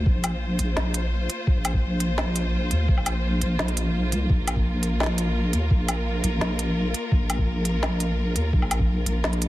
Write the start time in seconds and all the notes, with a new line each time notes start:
Already playing: A#3 F4 C5
0.06 A#1, kick
0.24 closed hi-hat, low woodblock
0.59 A#1, closed hi-hat
0.77 A#1, snare
0.94 closed hi-hat
1.30 closed hi-hat
1.47 A#1, kick
1.65 closed hi-hat, low woodblock
1.74 kick
2.00 closed hi-hat
2.18 snare, low woodblock
2.36 closed hi-hat
2.71 D#2, closed hi-hat
2.88 A#1, kick
2.98 low woodblock
3.06 closed hi-hat, low woodblock
3.41 A#1, closed hi-hat
3.59 A#1, snare
3.68 closed hi-hat
3.77 closed hi-hat
4.12 C2, closed hi-hat
4.30 A#1 A#4, kick
4.47 closed hi-hat, low woodblock
4.56 kick
4.83 closed hi-hat
5.00 snare, low woodblock
5.03 snare
5.06 snare
5.18 closed hi-hat
5.53 D#2, closed hi-hat
5.71 A#1, kick
5.88 closed hi-hat, low woodblock
6.24 A#1, closed hi-hat
6.41 A#1, snare
6.59 closed hi-hat
6.94 closed hi-hat
7.12 A#1, kick
7.30 closed hi-hat, low woodblock
7.38 kick
7.65 closed hi-hat
7.83 snare, low woodblock
8.00 closed hi-hat
8.36 D#2, closed hi-hat
8.53 A#1, kick
8.62 low woodblock
8.71 closed hi-hat, low woodblock
8.80 kick
9.06 A#1, closed hi-hat
9.24 A#1, snare
9.33 closed hi-hat
9.42 closed hi-hat